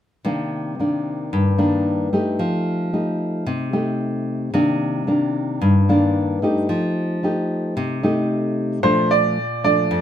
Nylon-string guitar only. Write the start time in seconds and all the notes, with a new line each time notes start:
0.25 C3 D#3 A#3 D4
0.79 D#3 A#3 D4
1.33 G2
1.58 D#3 A#3 D4
2.13 A3 D#4 G4
2.39 F3
2.93 A3 D#4 G4
3.46 C3
3.73 A3 D#4 G4
4.54 C3 D#3 A#3 D4
5.07 D#3 A#3 D4
5.61 G2
5.89 D#3 A#3 D4
6.42 A3 D#4 G4
6.69 F3
7.23 A3 D#4 G4
7.77 C3
8.03 A3 D#4 G4
8.83 A#2 F3 A3 D4
9.64 F3 A3 D4
9.91 F2